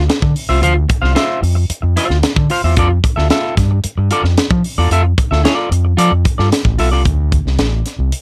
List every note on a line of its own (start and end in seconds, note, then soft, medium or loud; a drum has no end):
0.09 muted clean electric guitar stroke soft
0.09 snare loud
0.09 closed hi-hat medium
0.22 0.33 D3 medium
0.22 muted clean electric guitar stroke soft
0.22 kick medium
0.36 open hi-hat medium
0.49 0.59 C2 medium
0.49 0.61 F4 medium
0.49 0.62 C5 medium
0.49 0.62 E5 medium
0.62 0.83 D2 medium
0.62 0.75 F4 medium
0.62 0.75 C5 loud
0.62 0.75 F5 medium
0.62 closed hi-hat medium
0.76 muted clean electric guitar stroke soft
0.89 muted clean electric guitar stroke soft
0.89 kick medium
0.89 closed hi-hat medium
1.02 1.13 C2 medium
1.02 1.13 F4 soft
1.02 1.12 C5 medium
1.02 1.12 F5 medium
1.02 snare soft
1.15 1.40 F4 medium
1.15 1.41 C5 medium
1.15 1.41 E5 medium
1.15 snare loud
1.15 closed hi-hat medium
1.42 1.63 F2 medium
1.42 muted clean electric guitar stroke soft
1.42 open hi-hat soft
1.55 muted clean electric guitar stroke medium
1.70 muted fingered electric bass stroke soft
1.70 closed hi-hat loud
1.82 1.93 F2 medium
1.82 muted clean electric guitar stroke medium
1.96 2.17 F4 medium
1.96 2.09 C5 medium
1.96 2.08 E5 medium
1.96 snare soft
1.96 closed hi-hat medium
2.09 2.20 D2 medium
2.09 muted clean electric guitar stroke soft
2.09 snare soft
2.23 muted clean electric guitar stroke soft
2.23 snare loud
2.23 closed hi-hat medium
2.36 2.47 D3 medium
2.36 muted clean electric guitar stroke soft
2.36 kick loud
2.50 2.60 F4 medium
2.50 2.61 C5 medium
2.50 2.61 F5 medium
2.50 open hi-hat medium
2.63 2.77 E2 medium
2.63 2.75 F4 soft
2.63 2.74 C5 medium
2.63 2.74 E5 medium
2.77 2.97 F2 medium
2.77 2.90 F4 medium
2.77 2.90 A4 medium
2.77 2.89 D5 medium
2.77 kick loud
2.77 closed hi-hat medium
2.90 muted clean electric guitar stroke soft
3.04 muted clean electric guitar stroke soft
3.04 kick medium
3.04 closed hi-hat medium
3.16 3.27 D2 medium
3.16 3.27 F4 medium
3.16 3.27 A4 medium
3.16 3.27 E5 medium
3.16 snare soft
3.30 3.55 F4 medium
3.30 3.55 A4 medium
3.30 3.56 E5 medium
3.30 snare loud
3.30 closed hi-hat medium
3.57 3.78 G2 loud
3.57 muted clean electric guitar stroke soft
3.57 kick medium
3.57 snare soft
3.57 closed hi-hat medium
3.71 muted clean electric guitar stroke soft
3.84 muted fingered electric bass stroke soft
3.84 closed hi-hat loud
3.98 4.08 G2 medium
3.98 muted clean electric guitar stroke soft
4.11 4.24 F4 medium
4.11 4.24 A4 medium
4.11 4.23 D5 loud
4.11 closed hi-hat medium
4.23 4.34 F2 medium
4.23 muted clean electric guitar stroke soft
4.23 snare soft
4.38 muted clean electric guitar stroke soft
4.38 snare loud
4.38 closed hi-hat medium
4.50 4.61 F3 medium
4.50 muted clean electric guitar stroke medium
4.50 kick loud
4.64 open hi-hat medium
4.78 4.88 E2 medium
4.78 4.90 F4 medium
4.78 4.91 A4 medium
4.78 4.91 D5 medium
4.91 5.11 F2 medium
4.91 5.04 F4 medium
4.91 5.04 A4 medium
4.91 5.04 E5 loud
4.91 closed hi-hat medium
5.04 muted clean electric guitar stroke soft
5.18 muted clean electric guitar stroke soft
5.18 kick loud
5.18 closed hi-hat medium
5.31 5.41 D2 medium
5.31 5.42 F4 soft
5.31 5.42 A4 medium
5.31 5.41 E5 medium
5.31 snare soft
5.44 5.55 E4 medium
5.44 5.69 A4 medium
5.44 5.70 D5 medium
5.44 snare loud
5.44 closed hi-hat medium
5.55 5.69 F4 medium
5.71 5.91 F2 loud
5.71 muted clean electric guitar stroke soft
5.71 closed hi-hat medium
5.85 muted clean electric guitar stroke soft
5.97 6.08 F3 loud
5.97 6.10 F4 loud
5.97 6.11 A4 medium
5.97 6.11 D5 loud
5.97 closed hi-hat loud
6.12 6.22 F2 medium
6.25 muted clean electric guitar stroke soft
6.25 kick medium
6.25 closed hi-hat medium
6.38 6.49 G2 medium
6.38 6.49 F4 soft
6.38 6.49 A4 medium
6.38 6.48 D5 medium
6.38 snare soft
6.52 muted clean electric guitar stroke soft
6.52 snare loud
6.52 closed hi-hat medium
6.65 6.75 A1 medium
6.65 muted clean electric guitar stroke soft
6.65 kick medium
6.78 6.93 B1 medium
6.78 6.89 F4 medium
6.78 6.89 A4 medium
6.78 6.89 E5 medium
6.78 open hi-hat medium
6.92 7.02 C2 medium
6.92 7.03 F4 medium
6.92 7.02 A4 medium
6.92 7.02 D5 medium
7.05 7.36 D2 medium
7.05 kick medium
7.05 closed hi-hat medium
7.32 kick medium
7.32 closed hi-hat medium
7.45 7.56 C2 medium
7.45 snare soft
7.58 7.79 A1 medium
7.58 snare medium
7.58 closed hi-hat medium
7.86 snare soft
7.86 closed hi-hat medium
7.99 8.09 C2 medium
8.12 closed hi-hat medium